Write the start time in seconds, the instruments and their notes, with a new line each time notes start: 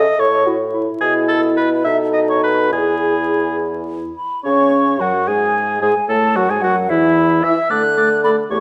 Already playing: french horn A4, oboe D#5
0.19 bassoon A2, french horn A4, oboe C#5, flute C#5
0.46 clarinet E4, french horn F#4
0.73 clarinet E4, french horn E4
1.01 bassoon B2, clarinet E4, oboe G#4, flute G#4
1.28 oboe A4, flute A4
1.57 oboe B4, flute B4
1.84 bassoon B2, clarinet D#4, french horn A4, oboe E5, flute E5
2.13 oboe D#5, flute D#5
2.28 flute C#5, oboe C#5
2.43 oboe B4, flute B4
2.72 bassoon E2, clarinet E4, oboe G#4, flute G#4, french horn G#4
4.17 flute B5
4.45 bassoon C#3, french horn C#4, clarinet C#5, oboe C#5, flute C#6
5.00 bassoon F#2, french horn F#3, clarinet F#4, oboe F#4, flute F#5
5.27 bassoon G#2, french horn G#3, clarinet G#4, oboe G#4, flute G#5
5.81 bassoon G#2, french horn G#3, clarinet G#4, oboe G#4, flute G#5
6.08 bassoon A2, french horn A3, clarinet A4, oboe A4, flute A5
6.36 bassoon F#2, french horn F#3, clarinet F#4, oboe F#4, flute F#5
6.49 bassoon G#2, french horn G#3, clarinet G#4, oboe G#4, flute G#5
6.61 bassoon F#2, french horn F#3, clarinet F#4, oboe F#4, flute F#5
6.89 bassoon E2, french horn E3, oboe E4, clarinet E4, flute E5
7.43 bassoon E3, french horn E4, oboe E5, clarinet E5, flute E6
7.70 bassoon D3, french horn A3, clarinet A4, oboe D5, flute F#6
7.97 french horn A3, clarinet A4, oboe D5
8.24 french horn A3, clarinet A4, oboe D5, flute B5
8.50 bassoon E2, french horn A3, clarinet G4, oboe C#5, flute C#6